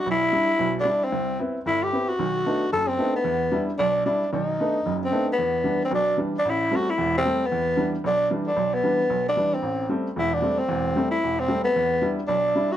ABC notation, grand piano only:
X:1
M:4/4
L:1/8
Q:"Swing" 1/4=226
K:Em
V:1 name="Grand piano" clef=bass
B,,,2 [G,DE] z [B,,,B,,]2 [G,DE] z | C,,2 [B,CE] z G,,,2 [B,CE] z | [B,,,^D,]2 [A,B,=D^D] z F,,,2 [A,B,=D^D] z | E,,2 [G,DE] z B,,,2 [G,DE] z |
[B,,,^D,]2 [A,B,=D^D] z [F,,,F,,]2 [A,B,=D^D] z | E,,2 [E,G,D] z [B,,,B,,]2 [E,G,D] z | A,,,2 [G,A,C] z [E,,,E,,]2 [G,A,C] z | E,,2 [E,G,D] z B,,,2 [E,G,D] z |
B,,,2 [E,G,D] z B,,,2 [E,G,D] z | A,,,2 [G,A,C] z [E,,,E,,]2 [G,A,C] z | [E,,,E,,]2 [G,A,C] z E,,,2 [G,A,C] z | E,,2 [G,DE] z B,,,2 [G,DE] z |]